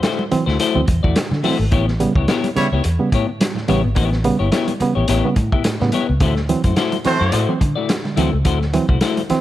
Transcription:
0.02 A3 E4 F#4 C5, snare, closed hi-hat, muted conga
0.19 high conga
0.31 E3 F#3 C4, muted clean electric guitar stroke, muted fingered electric bass stroke, closed hi-hat, low conga
0.46 D2 A3 E4 F#4 C5, snare
0.59 A3 E4 F#4 C5, closed hi-hat
0.75 D2 E3 F#3 C4
0.87 E2, muted clean electric guitar stroke, kick, closed hi-hat, high conga
1.03 E2 D3 A3 E4 F#4 D5, kick
1.16 F#3 C4, snare, closed hi-hat, muted conga, high conga
1.31 D3, muted clean electric guitar stroke, snare, high conga
1.43 E3 F#3 A3 C4 E4 F#4 C5, open hi-hat, muted conga, low conga
1.59 G#1, muted clean electric guitar stroke
1.71 A1 A2 B3 E4 G4 C#5, kick, closed hi-hat, muted conga, low conga
1.88 muted clean electric guitar stroke, snare
2.00 C#3 G3 B3, muted clean electric guitar stroke, closed hi-hat, muted conga, high conga
2.15 C#2 B3 E4 G4 C#5, kick
2.28 B3 E4 G4 C#5, snare, closed hi-hat, muted conga
2.44 closed hi-hat, high conga
2.56 C#3 G3 B3 E4 C#5, muted fingered electric bass stroke, muted clean electric guitar stroke, snare, closed hi-hat, muted conga, low conga
2.72 C#2 B3 E4 G4 C#5
2.84 E2, closed hi-hat
2.99 C#3 G3 B3
3.12 A2 B3 E4 G4 C#5, kick, closed hi-hat, muted conga, high conga
3.28 A2, muted clean electric guitar stroke
3.40 G3 B3, snare, closed hi-hat, high conga
3.55 A2, muted clean electric guitar stroke, snare, high conga
3.68 A1 C#3 G3 B3 E4 G4 C#5, closed hi-hat, low conga
3.84 G#1, muted clean electric guitar stroke
3.95 A1 A2 B3 E4 G4 C#5, kick, closed hi-hat, low conga
4.12 muted clean electric guitar stroke, snare
4.24 C#3 G3 B3, muted clean electric guitar stroke, closed hi-hat, high conga
4.39 G1 G3 B3 E4 G4 C#5
4.52 B3 E4 G4 C#5, snare, closed hi-hat
4.68 closed hi-hat, high conga
4.80 C#3 G3 B3, muted clean electric guitar stroke, muted fingered electric bass stroke, closed hi-hat, low conga
4.95 A1 B3 E4 G4 C#5
5.08 A1 B3 E4 G4 C#5, closed hi-hat
5.25 C#3 G3 B3
5.36 A2, muted clean electric guitar stroke, kick, closed hi-hat, muted conga, high conga
5.52 A2 B3 E4 G4 E5, kick
5.64 A2, muted clean electric guitar stroke, muted fingered electric bass stroke, snare, closed hi-hat, muted conga, high conga
5.80 A2 C#3 G3 B3, muted clean electric guitar stroke, snare, high conga
5.92 G3 B3 E4 G4 C#5, closed hi-hat, muted conga, low conga
6.09 C#2, muted clean electric guitar stroke
6.20 D2 D3 A3 E4 F#4 C5, kick, closed hi-hat, muted conga, low conga
6.36 muted clean electric guitar stroke, snare
6.49 E3 F#3 C4, muted clean electric guitar stroke, closed hi-hat, muted conga, high conga
6.64 F#2 F#3 A3 C4 E4 F#4 C5, kick, closed hi-hat
6.76 A3 E4 F#4 C5, snare, closed hi-hat, muted conga
6.92 closed hi-hat, high conga
7.04 E3 F#3 A3 C4 F#4 C5, muted clean electric guitar stroke, muted fingered electric bass stroke, snare, closed hi-hat, muted conga, low conga
7.20 F#2 A3 E4 F#4 C5
7.32 A2 A3 E4 F#4 C5, closed hi-hat, muted conga
7.48 E3 F#3 C4
7.60 D3, muted clean electric guitar stroke, kick, closed hi-hat, muted conga, high conga
7.76 D3 A3 E4 F#4 D5
7.89 F#3 C4, snare, closed hi-hat, muted conga, high conga
8.04 D3, muted clean electric guitar stroke, snare, high conga
8.16 D2 E3 F#3 A3 C4 E4 F#4 C5, closed hi-hat, low conga
8.33 C#2, muted clean electric guitar stroke
8.45 D2 D3 A3 E4 F#4 C5, kick, closed hi-hat, low conga
8.61 muted clean electric guitar stroke, snare
8.73 E3 F#3 C4, muted clean electric guitar stroke, closed hi-hat, muted conga, high conga
8.89 C2 F#3 A3 C4 E4 F#4 C5, kick
9.01 A3 E4 F#4 C5, snare, closed hi-hat
9.17 closed hi-hat, high conga
9.29 E3 F#3 C4, muted clean electric guitar stroke, muted fingered electric bass stroke, snare, closed hi-hat, low conga

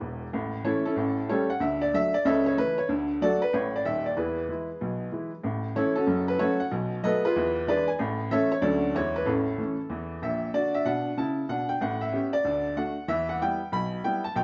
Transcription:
Already playing: E4 B4
0.01 E1 E2
0.33 A1 A2
0.64 E3 A3 C#4 E4 A4 C#5
0.85 C#4 E4 A4
0.96 A1 A2
1.29 G3 A3 C#4 G4 A4 C#5
1.50 F#5
1.60 D2 D3 E5
1.81 D5
1.94 F#3 A3 D4 E5
2.14 D5
2.25 C#2 C#3 A4 C#5 E5
2.46 C#5
2.58 E3 A3 B4
2.78 C#5
2.89 D2 D3
3.21 F#3 A3 F#4 A4 D5
3.42 B4
3.53 A1 A2 C#5
3.76 D5
3.85 D#1 D#2 E5
4.06 D5
4.17 E2 E3 E4 G#4 B4
4.49 E3 G#3 E4
4.81 B1 B2
5.12 E3 G#3 E4
5.44 A1 A2
5.76 E3 A3 C#4 E4 A4 C#5
5.96 C#4 F#4 A4
6.07 F#1 F#2
6.28 B4
6.38 F#3 A3 C#4 F#4 A4 C#5
6.60 F#5
6.71 B1 B2
7.03 F#3 A3 B3 A4 B4 D#5
7.25 F4 G#4 B4
7.36 E2 E3
7.68 E3 G#3 D4 G#4 B4 D5
7.88 G#5
7.99 A1 A2
8.31 E3 A3 C#4 A4 C#5 E5
8.52 C#5
8.61 D2 D3 F#3 A3 C#4 F#4 A4 D5
8.95 E2 E3 G#3 E4 C#5
9.16 B4
9.26 A1 A2 C#4 E4 A4
9.58 E3 A3 C#4
9.90 E2 E3
10.22 A#1 A#2 E5
10.54 D3 F#4 D5
10.74 E5
10.85 B2 D4 F#5
11.17 C#3 E4 A5
11.49 B2 D4 F#5
11.69 G5
11.81 A1 A2 F#5
12.01 E5
12.13 B3 C#4 G4
12.33 D5
12.44 D2 D3
12.77 A3 D4 F#4 F#5
13.08 E2 E3 E5
13.29 F#5
13.41 G3 B3 E4 G5
13.72 B1 B2 B5
14.04 G3 B3 E4 G5
14.24 A5
14.36 B1 B2 G5

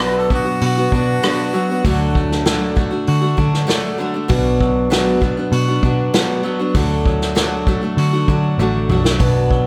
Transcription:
Already playing: B1 B2
0.00 F#3 B3 D4 F#4 B4, cross-stick, open hi-hat
0.18 A4
0.30 F#3 B3 D4 F#4, kick
0.45 B3 D4 F#4
0.61 B2 F#4, open hi-hat
0.66 F#4
0.77 B3 D4 F#4
0.92 B2 F#3 B3 D4 F#4, kick
1.22 B2 F#3 B3 D4 F#4, cross-stick, open hi-hat
1.54 F#3 B3 D4 F#4
1.70 B3 D4 F#4
1.85 D2 D3 F#3 A3 D4 F#4, kick, open hi-hat
2.15 A3, kick
2.32 snare
2.45 D3 F#3 A3 D4 F#4, snare, open hi-hat
2.75 F#3 A3 D4 F#4, kick
2.91 A3 D4 F#4
3.07 D3 F#4, open hi-hat
3.22 A3 D4 F#4
3.37 D3 F#3 A3 D4 F#4, kick
3.54 snare
3.67 D3 F#3 A3 D4 F#4, snare, open hi-hat
3.98 D3 F#3 A3 D4 F#4
4.14 A3 D4 F#4
4.28 B1 B2 F#3 B3 D4 F#4, kick, open hi-hat
4.61 F#3, kick
4.90 B2 F#3 B3 D4 F#4, snare, open hi-hat
5.21 F#3 B3 D4 F#4, kick
5.37 B3 D4 F#4
5.52 B2 F#4, open hi-hat
5.68 B3 D4 F#4
5.83 B2 F#3 B3 D4 F#4, kick
6.13 B2 F#3 B3 D4 F#4, snare, open hi-hat
6.43 F#3 B3 D4 F#4
6.59 B3 D4 F#4
6.75 D2 D3 F#3 A3 D4 F#4, kick, open hi-hat
7.06 F#3, kick
7.22 snare
7.35 D3 F#3 A3 D4 F#4, snare, open hi-hat
7.67 F#3 A3 D4 F#4, kick
7.81 A3 D4 F#4
7.97 D3 F#4, open hi-hat
8.13 A3 D4 F#4
8.28 D3 F#3 A3 D4 F#4, kick
8.58 A1 D3 F#3 A3 D4 F#4, high tom
8.89 B1 F#3 A3 D4 F#4, mid tom
9.04 A3 D4 F#4, snare
9.19 B1 B2 F#3 B3 D4 F#4, kick, open hi-hat
9.51 F#3, kick

